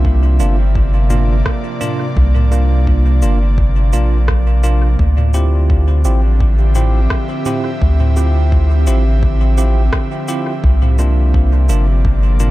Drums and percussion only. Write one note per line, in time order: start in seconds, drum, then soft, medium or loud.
0.05 kick loud
0.40 cabasa medium
0.75 kick loud
1.10 mid tom medium
1.10 cabasa medium
1.46 kick loud
1.46 cross-stick medium
1.81 mid tom medium
1.81 cabasa medium
2.17 kick loud
2.36 mid tom medium
2.52 cabasa medium
2.87 kick loud
3.22 cabasa medium
3.58 kick loud
3.93 cabasa medium
4.28 kick loud
4.28 cross-stick medium
4.64 cabasa medium
4.99 kick loud
5.18 mid tom medium
5.34 cabasa medium
5.70 kick loud
6.05 cabasa medium
6.40 kick loud
6.75 mid tom medium
6.75 cabasa medium
7.10 kick loud
7.10 cross-stick medium
7.46 mid tom medium
7.46 cabasa medium
7.82 kick loud
8.00 mid tom medium
8.16 cabasa medium
8.52 kick loud
8.87 cabasa medium
9.23 kick loud
9.58 cabasa medium
9.93 kick loud
9.93 cross-stick medium
10.28 cabasa medium
10.64 kick loud
10.83 mid tom medium
10.99 cabasa medium
11.34 kick loud
11.69 cabasa medium
12.05 kick loud
12.40 mid tom medium
12.40 cabasa medium